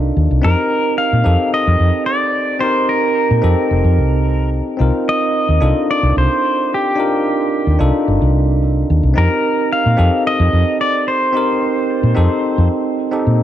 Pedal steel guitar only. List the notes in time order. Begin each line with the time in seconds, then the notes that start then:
0.44 A#4
0.98 F5
1.54 D#5
2.06 D5
2.60 C5
2.89 A#4
5.09 D#5
5.91 D5
6.18 C5
6.74 G4
9.18 A#4
9.73 F5
10.27 D#5
10.81 D5
11.08 C5